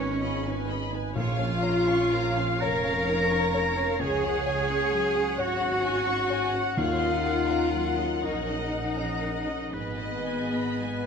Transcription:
Already playing: G#1 G#2 B3 C#4 B4 C#5
0.00 D#4 B4 G#5
0.21 F4 G#4 D#5 B5
0.46 D#4 B4 G#5
0.68 G#4 B4 D#5 B5
0.90 D#4 B4 G#5
0.94 B4
1.14 A#1 A#2 F4 C#5 F5
1.18 C#5
1.37 C#4 F5
1.61 C#5 A#5
1.87 C#4 C#6
2.11 A#3 A#5
2.36 C#4 F5
2.61 F1 A#4 C#5 A#5
2.84 C#4 F5
3.08 D#4 A#5
3.30 C#4 C#6
3.54 C#5 A#5
3.76 C#4 F5
3.99 C#2 G#4 C#5 F#5 G#5
4.23 C#4 F#5
4.46 C#5 G#5
4.70 C#4 C#6
4.92 F#3 G#5
5.15 C#4 F#5
5.37 G#1 F#4 C#5 F#5
5.59 C#4 F#5
5.83 D#4 G#5
6.06 C#4 C#6
6.28 C#5 G#5
6.51 C#4 F#5
6.75 D#2 D#3 D#4 F4 A#4 C#5 F5
7.00 C#4 D#5
7.23 A#4 F#5
7.47 C#4 A#5
7.70 F#3 F#5
7.95 C#4 D#5
8.20 A#1 D#4 A#4 C#5 D#5
8.46 C#4 D#5
8.70 D#4 F#5
8.95 C#4 A#5
9.21 A#4 F#5
9.47 C#4 D#5
9.71 G#1 G#2 B3 G#4 B4 D#5
9.99 B3 D#5
10.25 B4 G#5
10.53 B3 B5
10.81 G#3 G#5

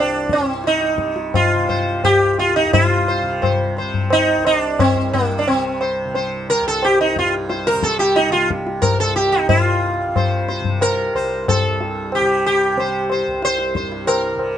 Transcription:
Already playing: C2 G2 C3
0.00 D4
0.29 C4, tabla ke
0.38 G2
0.64 D#4, tabla te
0.81 tabla te
0.95 C3, tabla ke
1.16 tabla te
1.34 F4, tabla na, tabla ge
1.54 C3
1.69 C5, tabla ge
2.04 G4, tabla na, tabla ge
2.11 C2
2.39 F4, tabla te
2.56 D#4
2.66 G2
2.73 F4, tabla tin, tabla ge
3.08 C5
3.22 C3
3.42 C5, tabla na, tabla ge
3.77 C3 C5, tabla te
3.94 tabla ge
4.10 D#4, tabla na
4.38 C2
4.45 D4, tabla na
4.79 C4, tabla na, tabla ge
4.95 G2
5.13 A#3, tabla ge
5.39 D4
5.48 C3 C4, tabla na
5.81 C5, tabla na
6.05 C3
6.15 C5, tabla tin
6.50 A#4
6.61 C2
6.68 A4
6.82 G4, tabla na
7.01 D#4
7.16 G2 F4, tabla ke
7.49 C5, tabla te
7.67 A#4, tabla te
7.74 C3
7.83 A4, tabla ke
7.99 G4, tabla te
8.16 D#4, tabla te
8.29 C3 F4
8.34 tabla te
8.51 tabla ke
8.67 tabla te
8.82 A#4, tabla na, tabla ge
8.86 C2
9.00 A4
9.16 G4, tabla te
9.32 D#4
9.49 G2 F4, tabla tin, tabla ge
10.07 C3
10.16 C5, tabla na, tabla ge
10.48 C5, tabla te
10.60 C3
10.64 tabla ge
10.81 A#4, tabla na
11.14 C2 C5, tabla na
11.48 A4, tabla na, tabla ge
11.67 G2
11.81 tabla te
12.12 G4, tabla na
12.21 C3
12.46 G4
12.75 C3, tabla tin
12.80 C5
13.10 C5, tabla na
13.27 C2
13.42 C5, tabla te
13.58 tabla te
13.75 C5, tabla ke
13.81 G2
13.92 tabla te
14.07 A#4, tabla na
14.35 C3
14.39 tabla na

